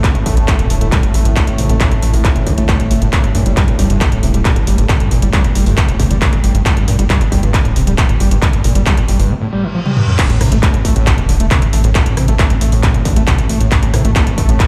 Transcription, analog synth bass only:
0.15 0.24 A1 medium
0.26 0.35 A1 loud
0.37 0.46 A1 medium
0.59 0.68 E1 medium
0.70 0.79 E1 loud
0.81 0.91 E1 medium
1.03 1.13 A1 medium
1.14 1.24 A1 loud
1.25 1.35 A1 medium
1.47 1.57 A1 medium
1.58 1.68 A1 loud
1.70 1.79 A1 loud
1.92 2.01 A1 medium
2.03 2.12 A1 loud
2.14 2.23 A1 medium
2.36 2.45 G1 medium
2.47 2.56 A1 loud
2.58 2.67 A1 medium
2.80 2.89 A#1 medium
2.91 3.00 G1 loud
3.02 3.11 G1 medium
3.24 3.33 G1 medium
3.35 3.44 G2 loud
3.46 3.55 G1 medium
3.68 3.77 G1 medium
3.79 3.88 G1 loud
3.90 3.99 G1 medium
4.12 4.21 D1 medium
4.23 4.32 D1 loud
4.34 4.43 D1 medium
4.56 4.65 G1 medium
4.67 4.77 G1 loud
4.78 4.88 G1 medium
5.00 5.10 G1 medium
5.11 5.21 G1 medium
5.22 5.32 G1 medium
5.45 5.54 G1 medium
5.56 5.65 G1 loud
5.67 5.76 G1 medium
5.89 5.98 F1 medium
6.00 6.09 G1 loud
6.11 6.20 G1 medium
6.33 6.42 G1 medium
6.44 6.53 G1 loud
6.55 6.64 G1 medium
6.77 6.86 G1 medium
6.88 6.97 G2 loud
6.99 7.08 G1 loud
7.21 7.30 G1 medium
7.32 7.41 G1 loud
7.43 7.52 G1 medium
7.65 7.74 D1 medium
7.76 7.85 D1 medium
7.87 7.96 D1 medium
8.09 8.18 G1 medium
8.20 8.29 G1 loud
8.31 8.40 G1 medium
8.53 8.63 G1 medium
8.64 8.74 G1 loud
8.75 8.85 G1 loud
8.97 9.07 G1 loud
9.08 9.18 G1 loud
9.20 9.29 G1 medium
10.30 10.39 A1 medium
10.41 10.50 A2 loud
10.52 10.61 A1 medium
10.74 10.83 A1 medium
10.85 10.94 A1 loud
10.96 11.05 A1 medium
11.18 11.27 E1 medium
11.29 11.38 E1 loud
11.40 11.49 E1 medium
11.62 11.71 A1 medium
11.73 11.82 A1 loud
11.84 11.93 A1 medium
12.06 12.15 A1 medium
12.17 12.27 A1 loud
12.28 12.38 A1 medium
12.50 12.60 A1 loud
12.61 12.71 A1 loud
12.72 12.82 A1 medium
12.95 13.04 G1 medium
13.05 13.15 A1 loud
13.16 13.26 A1 medium
13.39 13.48 A1 medium
13.50 13.59 A1 loud
13.61 13.70 A1 medium
13.83 13.92 A1 medium
13.94 14.03 A2 medium
14.05 14.14 A1 medium
14.27 14.36 A1 medium
14.38 14.47 A1 loud
14.49 14.58 A1 medium

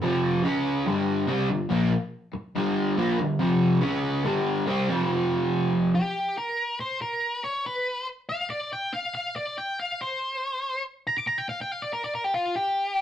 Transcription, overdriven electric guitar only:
0.02 0.43 F2 medium
0.02 0.43 C3 loud
0.02 0.44 F3 loud
0.43 0.85 C#3 loud
0.43 0.85 G#3 medium
0.43 0.86 C#4 medium
0.86 1.28 G2 loud
0.86 1.27 D3 medium
0.86 1.26 G3 loud
1.27 1.48 C3 medium
1.27 1.48 G3 medium
1.27 1.49 C4 loud
1.48 1.66 G2 medium
1.48 1.66 D3 medium
1.69 1.90 A#2 loud
1.69 1.91 F3 loud
1.69 1.91 A#3 loud
2.33 muted overdriven electric guitar stroke medium
2.55 2.97 G2 loud
2.55 2.97 D3 loud
2.55 2.97 G3 loud
2.97 3.18 A#2 medium
2.97 3.18 F3 loud
2.97 3.18 A#3 loud
3.18 3.35 G2 medium
3.18 3.36 D3 medium
3.39 3.81 F2 medium
3.39 3.80 C3 loud
3.39 3.81 F3 loud
3.81 4.23 C#3 medium
3.81 4.23 G#3 loud
3.81 4.23 C#4 loud
4.24 4.66 G2 loud
4.24 4.66 D3 loud
4.24 4.66 G3 loud
4.66 4.87 C3 loud
4.66 4.87 G3 medium
4.66 4.87 C4 loud
4.88 5.93 F2 medium
4.88 5.93 C3 medium
4.88 5.94 F3 loud

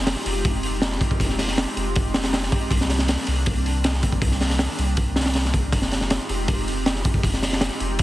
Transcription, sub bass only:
0.00 0.15 F1 loud
0.26 1.00 F1 loud
1.20 1.66 F1 loud
1.77 2.51 F1 loud
2.71 3.17 C2 loud
3.28 4.02 C2 loud
4.22 4.68 C2 loud
4.79 4.97 C2 loud
4.97 5.71 C2 medium
5.72 6.19 F1 loud
6.29 7.03 F1 loud
7.23 7.69 F1 loud
7.80 8.03 F1 loud

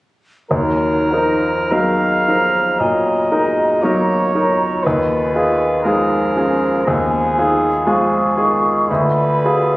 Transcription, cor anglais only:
0.51 1.74 A#4 soft
1.72 2.81 F5 medium
2.79 3.85 D#5 soft
3.83 4.85 C#5 medium
4.84 5.83 B4 soft
5.83 6.84 A#4 medium
6.86 8.34 G#4 medium
8.89 9.77 B4 medium

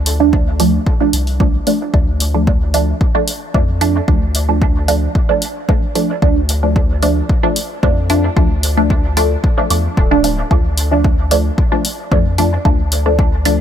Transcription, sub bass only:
0.00 0.79 D2 loud
1.13 1.60 C2 medium
1.94 2.94 D2 loud
3.54 4.01 F2 medium
4.08 5.08 D2 loud
6.22 7.22 D2 loud
7.83 8.29 F2 medium
8.37 9.37 D2 loud
9.71 9.88 E2 medium
9.97 10.44 D1 medium
10.51 11.51 D2 loud
12.12 12.58 F2 medium
12.65 13.61 D2 medium

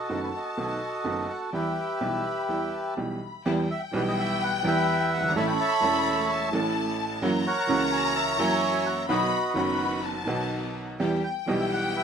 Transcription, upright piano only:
0.09 0.30 F#1 medium
0.09 0.29 F#2 medium
0.09 0.29 D#3 medium
0.09 0.29 A3 medium
0.09 0.29 B3 medium
0.09 0.30 F#4 medium
0.57 0.77 B1 medium
0.57 0.77 B2 medium
0.57 0.77 D#3 medium
0.57 0.77 A3 medium
0.57 0.77 B3 medium
0.57 0.77 F#4 medium
1.04 1.25 F#1 medium
1.04 1.25 F#2 medium
1.04 1.25 D#3 medium
1.04 1.25 A3 medium
1.04 1.25 B3 medium
1.04 1.25 F#4 medium
1.53 1.73 E2 medium
1.53 1.73 E3 medium
1.53 1.73 G3 medium
1.53 1.73 B3 medium
1.53 1.73 G4 medium
2.00 2.21 B1 medium
2.00 2.21 B2 medium
2.00 2.21 E3 medium
2.00 2.21 G3 medium
2.00 2.21 B3 medium
2.00 2.21 G4 medium
2.49 2.69 E2 medium
2.49 2.69 E3 medium
2.49 2.69 G3 medium
2.49 2.69 B3 medium
2.49 2.69 G4 medium
2.97 3.18 B1 medium
2.97 3.18 B2 medium
2.97 3.18 E3 medium
2.97 3.18 G3 medium
2.97 3.18 B3 medium
2.97 3.18 G4 medium
3.45 3.66 E2 loud
3.45 3.66 E3 medium
3.45 3.66 G3 medium
3.45 3.66 B3 medium
3.45 3.66 G4 loud
3.91 4.61 B1 loud
3.91 4.61 B2 medium
3.91 4.60 E3 medium
3.91 4.60 G3 medium
3.91 4.61 B3 medium
3.91 4.62 G4 loud
4.64 5.32 E2 loud
4.64 5.32 E3 loud
4.64 5.31 G3 medium
4.64 5.32 B3 medium
4.64 5.33 G4 medium
5.18 5.24 F#1 medium
5.24 5.30 G1 medium
5.30 5.35 G#1 loud
5.36 5.55 A1 loud
5.36 5.56 A2 loud
5.36 5.55 E3 medium
5.36 5.55 A3 medium
5.36 5.55 C#4 medium
5.36 5.56 A4 loud
5.80 6.49 E1 loud
5.80 6.49 E2 medium
5.80 6.48 E3 medium
5.80 6.49 A3 medium
5.80 6.49 C#4 medium
5.84 6.50 A4 medium
6.51 7.19 A1 loud
6.51 7.19 A2 loud
6.51 7.18 E3 medium
6.51 7.19 A3 medium
6.51 7.20 C#4 medium
6.51 7.20 A4 loud
7.22 7.42 F#2 loud
7.22 7.42 E3 medium
7.22 7.42 F#3 loud
7.22 7.42 A#3 medium
7.22 7.42 C#4 medium
7.22 7.42 F#4 loud
7.67 8.36 C#2 loud
7.67 8.36 C#3 loud
7.67 8.35 E3 medium
7.67 8.35 A#3 medium
7.67 8.36 C#4 medium
7.67 8.36 F#4 loud
8.37 9.06 F#2 loud
8.37 9.05 E3 medium
8.37 9.06 F#3 loud
8.37 9.06 A#3 medium
8.37 9.07 C#4 medium
8.37 9.07 F#4 loud
9.09 9.29 B1 loud
9.09 9.29 B2 loud
9.09 9.29 D#3 medium
9.09 9.29 F#3 medium
9.09 9.29 B3 medium
9.09 9.29 F#4 loud
9.54 10.24 F#1 loud
9.54 10.24 F#2 loud
9.54 10.23 D#3 medium
9.54 10.23 F#3 medium
9.54 10.24 B3 medium
9.58 10.25 F#4 medium
10.25 10.96 B1 loud
10.25 10.96 B2 medium
10.25 10.95 D#3 medium
10.25 10.96 F#3 medium
10.25 10.96 B3 medium
10.25 10.97 F#4 medium
10.99 11.20 E2 medium
10.99 11.20 E3 loud
10.99 11.20 G3 medium
10.99 11.20 B3 medium
10.99 11.20 G4 loud
11.46 12.04 B1 medium
11.46 12.04 B2 loud
11.46 12.04 E3 medium
11.46 12.04 G3 medium
11.46 12.04 B3 medium
11.46 12.04 G4 medium

